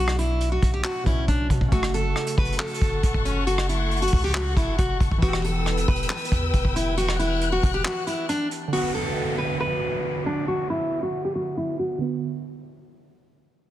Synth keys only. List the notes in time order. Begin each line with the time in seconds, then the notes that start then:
Already playing: B2 F#3 D4
1.04 B2 F#3
1.09 C#4
1.69 C#3
1.74 A3
1.79 F#4
5.18 E3
5.23 B3
5.28 G4
8.68 D3
8.73 B3
8.78 F#4
11.98 D3 B3
12.04 F#4